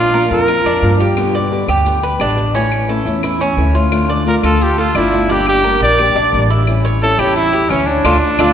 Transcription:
Already playing: upright bass A#1, nylon-string guitar F3 A#3 D4 F4, cuban tres D4
0.00 trumpet F4
0.13 nylon-string guitar F3 A#3 D4 F4, cuban tres A#4, maracas
0.31 upright bass F2, nylon-string guitar A#3 D4 F4, trumpet A#4, maracas
0.48 nylon-string guitar F3 A#3 D4 F4, cuban tres F4, claves, maracas
0.65 upright bass F2, cuban tres D4, muted nylon-string guitar stroke, maracas
0.82 upright bass G2, nylon-string guitar F3 A#3 D4 F4, maracas
0.99 nylon-string guitar A#3 D4 F4, cuban tres G4, maracas
1.16 nylon-string guitar B2 D3 G3 B3 G4, claves, maracas
1.35 cuban tres D5, maracas
1.51 nylon-string guitar B2 D3 G3 B3 G4, maracas
1.68 upright bass D2, nylon-string guitar G3 B3 G4, cuban tres G4, claves, maracas
1.85 nylon-string guitar D3 G3 B3 G4, maracas
2.02 cuban tres B4, muted nylon-string guitar stroke, maracas
2.19 upright bass A1, nylon-string guitar B2 D3 G3 B3 G4, cuban tres D4, claves, maracas
2.37 nylon-string guitar G3 B3 G4, maracas
2.54 nylon-string guitar E3 A3 C#4 E4, cuban tres C#4, maracas
2.72 claves, maracas
2.88 nylon-string guitar E3 A3 C#4 E4, cuban tres A4, maracas
3.05 upright bass E2, nylon-string guitar A3 C#4 E4, maracas
3.23 nylon-string guitar E3 A3 C#4 E4, cuban tres E4, claves, maracas
3.40 cuban tres C#4, muted nylon-string guitar stroke, maracas
3.57 upright bass D2, nylon-string guitar E3 A3 C#4 E4, maracas
3.74 nylon-string guitar A3 C#4 E4, cuban tres F4, maracas
3.91 nylon-string guitar D3 A3 D4 F4, claves, maracas
4.09 cuban tres D5, maracas
4.25 nylon-string guitar D3 A3 D4 F4, trumpet A#4, maracas
4.43 upright bass D2, nylon-string guitar A3 D4 F4, cuban tres F4, trumpet A4, claves, maracas
4.60 nylon-string guitar D3 A3 D4 F4, trumpet G4, maracas
4.78 trumpet F4, cuban tres A4, muted nylon-string guitar stroke, maracas
4.95 upright bass G1, nylon-string guitar D3 A3 D4 F4, cuban tres D4, trumpet E4, claves, maracas
5.11 nylon-string guitar A3 D4 F4, maracas
5.29 nylon-string guitar D3 G3 A#3 D4 G4, cuban tres D4, trumpet G4, maracas
5.47 trumpet G4, claves, maracas
5.64 nylon-string guitar D3 G3 A#3 D4 G4, cuban tres A#4, maracas
5.81 upright bass A#1, nylon-string guitar A#3 D4 G4, trumpet D5, maracas
5.98 nylon-string guitar G3 A#3 D4 G4, cuban tres G4, claves, maracas
6.15 upright bass A#1, cuban tres D4, muted nylon-string guitar stroke, maracas
6.32 upright bass A1, nylon-string guitar D3 G3 A#3 D4 G4, maracas
6.50 nylon-string guitar A#3 D4 G4, cuban tres E4, maracas
6.67 nylon-string guitar E3 G3 C#4 E4, claves, maracas
6.85 cuban tres C#5, maracas
7.02 nylon-string guitar E3 G3 C#4 E4, trumpet A4, maracas
7.19 upright bass E2, nylon-string guitar G3 C#4 E4, cuban tres E4, trumpet G4, claves, maracas
7.36 nylon-string guitar E3 G3 C#4 E4, trumpet E4, maracas
7.53 cuban tres G4, muted nylon-string guitar stroke, maracas
7.69 upright bass D2, nylon-string guitar E3 G3 C#4 E4, trumpet C#4, cuban tres C#4, claves, maracas
7.86 nylon-string guitar G3 C#4 E4, trumpet D4, maracas
8.04 upright bass D2, nylon-string guitar A3 D4 F4, cuban tres D4 F4 A4, claves, maracas
8.39 upright bass D2, nylon-string guitar A3 D4 F4, cuban tres D4 F4 A4, claves, maracas

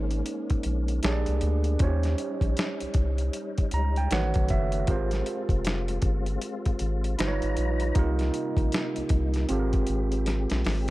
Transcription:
Already playing: analog synth bass G#1, tonewheel organ G#3 A#3 C#4, tine electric piano C#4 D#4 G#4 C5
0.11 closed hi-hat
0.26 closed hi-hat
0.50 kick, closed hi-hat
0.63 analog synth bass A#1, closed hi-hat
0.88 closed hi-hat
1.03 analog synth bass A#1, tonewheel organ A#3 D4, tine electric piano D4 G4 G#4 C#5, snare, closed hi-hat
1.12 tine electric piano D5
1.26 analog synth bass C2, closed hi-hat
1.41 analog synth bass D2, closed hi-hat
1.64 closed hi-hat
1.79 analog synth bass D#2, tonewheel organ G3 C#4 D#4, tine electric piano C#4 F4 C5, kick, closed hi-hat
1.83 tine electric piano G4 C#5
2.03 snare, closed hi-hat
2.18 closed hi-hat
2.41 analog synth bass A#1, kick, closed hi-hat
2.57 snare, closed hi-hat
2.80 analog synth bass C2, closed hi-hat
2.94 analog synth bass C2, kick, closed hi-hat
3.18 closed hi-hat
3.33 closed hi-hat
3.58 kick, closed hi-hat
3.71 analog synth bass C#2, tine electric piano A#5, closed hi-hat
3.96 tine electric piano G5, closed hi-hat
4.11 analog synth bass A1, tine electric piano D#3 F#4 B4 C#5 F#5, tonewheel organ A3 F#4, snare, closed hi-hat
4.34 analog synth bass B1, kick, closed hi-hat
4.48 analog synth bass F#1, tine electric piano E5, kick, closed hi-hat
4.72 closed hi-hat
4.87 analog synth bass G#1, tonewheel organ G#3 C4 F4, tine electric piano F4 G4 A#4, kick, closed hi-hat
4.91 tine electric piano C5
5.11 snare, closed hi-hat
5.26 closed hi-hat
5.49 analog synth bass F1, kick, closed hi-hat
5.65 snare, closed hi-hat
5.88 closed hi-hat
6.02 analog synth bass G1, kick, closed hi-hat
6.26 closed hi-hat
6.42 closed hi-hat
6.66 kick, closed hi-hat
6.79 analog synth bass G#1, closed hi-hat
7.04 closed hi-hat
7.18 analog synth bass G1, tonewheel organ G3 D#4 B4 A#5, tine electric piano D#4 F4 B4 C5, snare, closed hi-hat
7.27 tine electric piano C#5
7.42 analog synth bass G#1, closed hi-hat
7.57 analog synth bass A#1, closed hi-hat
7.80 closed hi-hat
7.95 analog synth bass C2, tonewheel organ C3 G3 A#3 D#4, tine electric piano D#4 F4 G4, kick, closed hi-hat
7.99 tine electric piano A#4
8.19 snare, closed hi-hat
8.34 closed hi-hat
8.57 analog synth bass A#1, kick, closed hi-hat
8.72 snare, closed hi-hat
8.96 analog synth bass C2, closed hi-hat
9.09 analog synth bass C2, kick, closed hi-hat
9.34 snare, closed hi-hat
9.49 analog synth bass G#1, tonewheel organ G#3 C4 G4, tine electric piano C4 F4 G4, closed hi-hat
9.53 tine electric piano A4
9.59 tine electric piano A#4
9.73 kick, closed hi-hat
9.87 analog synth bass G#1, closed hi-hat
10.12 closed hi-hat
10.26 snare, closed hi-hat
10.50 analog synth bass A#1, snare, closed hi-hat
10.65 analog synth bass G#1, snare, open hi-hat

